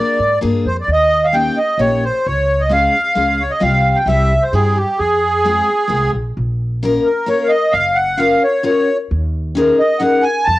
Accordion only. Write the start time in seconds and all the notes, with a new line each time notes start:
Already playing: D5
0.67 C5
0.81 D5
0.92 D#5
1.25 F5
1.34 G5
1.58 D#5
1.80 C#5
2.04 C5
2.26 C#5
2.60 D#5
2.72 F5
3.40 C#5
3.51 D#5
3.62 F5
3.95 G5
4.08 E5
4.42 C5
4.54 G#4
4.77 G4
4.98 G#4
7.05 A#4
7.29 C#5
7.43 F5
7.49 D#5
7.72 F5
7.95 F#5
8.18 F5
8.44 C#5
8.65 C#5
9.79 D#5
9.99 F#5
10.23 G#5
10.45 A5